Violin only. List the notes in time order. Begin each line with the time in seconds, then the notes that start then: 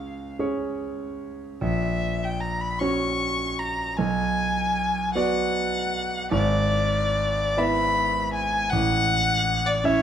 Already playing: F5
1.63 E5
2.24 G5
2.40 A#5
2.61 B5
2.79 C#6
3.59 A#5
3.97 G#5
5.14 F#5
6.32 D5
7.58 B5
8.34 G#5
8.70 F#5
9.66 D5
9.84 C#5